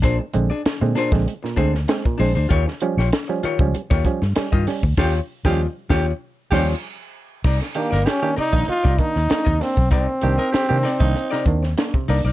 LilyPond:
<<
  \new Staff \with { instrumentName = "Hollow-body jazz guitar" } { \time 4/4 \key c \minor \tempo 4 = 97 <d' aes' c''>16 r8 <d' aes' d''>16 r8 <d' aes' c''>16 r8. <d' aes' c''>16 r8. <d' aes' c''>16 <d' aes' c''>16 | <f' g' des''>16 r8 <f' g' des''>16 r8 <f' g' des''>16 r8 <f' g' des''>16 r8. <f' g' ees''>16 r8 | <f' g' des''>8 r16 <f' g' ees''>8 r16 <f' g' des''>8 r8 <f' g' des''>8 r4 | <ees' bes' d''>16 r8 <ees' bes' d''>16 r8 <ees' bes' d''>16 r8 <ees' bes' d''>16 r8. <ees' bes' ees''>16 r8 |
<ees' bes' d''>16 r8 <ees' bes' ees''>16 r8 <ees' bes' d''>16 r8 <ees' bes' d''>16 r4 <ees' bes' d''>16 <ees' bes' d''>16 | }
  \new Staff \with { instrumentName = "Tenor saxophone" } { \time 4/4 \key c \minor r1 | r1 | g'8 r16 g'8 r16 g'8 r8 g'8 r4 | r8 g'16 bes'16 g'16 g'16 r16 ees'8. r4. |
r8 g'16 bes'16 g'16 g'16 r16 ees'8. r4. | }
  \new Staff \with { instrumentName = "Trombone" } { \time 4/4 \key c \minor r1 | r1 | r1 | r8 bes8 des'8 ees'8 f'8 ees'4 c'8 |
c'2. r4 | }
  \new Staff \with { instrumentName = "Clav" } { \clef bass \time 4/4 \key c \minor bes,16 <aes c'>16 <d aes c'>16 r8 <d aes c'>16 bes,16 <d aes c'>16 <aes c'>16 bes,16 <d aes c'>16 r16 <aes c'>16 bes,16 <aes c'>16 r16 | ees16 <g des'>16 <f g des'>16 r8 <f g des'>16 ees16 <f g des'>16 <g des'>16 ees16 <f g des'>16 r16 <g des'>16 ees16 <g des'>16 r16 | r8. <f g des'>8 r4 r16 <f g des'>8 r4 | c16 <bes d'>16 <ees bes d'>16 r8 <ees bes d'>16 c16 <ees bes d'>16 <bes d'>16 c16 <ees bes d'>16 r16 <bes d'>16 c16 <bes d'>16 r16 |
c16 <bes d'>16 <ees bes d'>16 r8 <ees bes d'>16 c16 <ees bes d'>16 <bes d'>16 c16 <ees bes d'>16 r16 <bes d'>16 c16 <bes d'>16 r16 | }
  \new Staff \with { instrumentName = "Fingered electric bass" } { \clef bass \time 4/4 \key c \minor bes,,16 r16 bes,,16 r8 bes,16 r16 bes,,16 r8 d,8 r8 bes,,16 d,16 | ees,16 r8 bes,,16 r8. des,16 r16 ees,16 r16 g,16 r16 g,16 r16 d,16 | ees,8 r16 ees,8 r16 ees,8 r8 ees,8 r4 | c,16 r8 g,,16 r8. bes,,16 r16 c,16 r16 ees,16 r16 ees,16 r16 ces,16 |
c,16 r16 c,16 r8 c16 r16 c,16 r8 ees,8 r8 c,16 ces,16 | }
  \new DrumStaff \with { instrumentName = "Drums" } \drummode { \time 4/4 <hh bd>8 hh8 <hh sn>8 <hh sn>16 <bd sn>16 hh16 sn16 <hh bd>16 sn16 <hh sn>16 bd16 hho8 | <hh bd>16 sn16 hh16 sn16 <hh sn>8 hh16 bd16 hh16 <bd sn>16 <hh bd>16 sn16 <hh sn>16 bd16 <hho sn>16 bd16 | <cymc bd sn>8. <bd sn>16 r8 <bd sn>8 r8 <cymc bd sn>8 r4 | <cymc bd>16 sn16 hh16 sn16 <hh sn>8 hho16 bd16 hh16 <bd sn>16 <hh bd>16 sn16 <hh sn>16 bd16 <hho sn>16 bd16 |
<hh bd>8 hh8 <hh sn>8 <hho sn>16 <bd sn>16 hh16 sn16 <hh bd>16 sn16 <hh sn>16 bd16 hho8 | }
>>